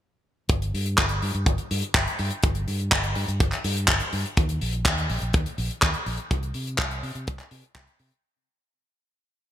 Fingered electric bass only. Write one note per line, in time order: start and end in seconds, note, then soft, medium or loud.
0.50 0.71 G1 medium
0.74 0.95 G2 medium
0.98 1.19 G1 medium
1.23 1.33 G2 loud
1.35 1.45 G2 medium
1.46 1.57 G1 medium
1.71 1.81 G2 medium
1.95 2.05 G1 medium
2.19 2.30 G2 medium
2.44 2.64 G1 loud
2.67 2.89 G2 medium
2.92 3.13 G1 medium
3.16 3.27 G2 loud
3.28 3.39 G2 medium
3.40 3.51 G1 medium
3.65 3.85 G2 medium
3.88 3.99 G1 medium
4.13 4.23 G2 medium
4.37 4.58 D#2 loud
4.61 4.82 A#1 medium
4.85 5.06 D#2 medium
5.10 5.20 A#1 loud
5.22 5.32 A#1 medium
5.34 5.44 D#2 medium
5.58 5.68 A#1 medium
5.83 5.93 D#2 medium
6.06 6.17 A#1 medium
6.31 6.52 C2 loud
6.55 6.76 C3 medium
6.79 7.00 C2 medium
7.03 7.13 C3 loud
7.15 7.26 C3 medium
7.28 7.38 C2 medium
7.51 7.62 C3 medium
7.75 7.86 C2 medium
8.00 8.10 C3 medium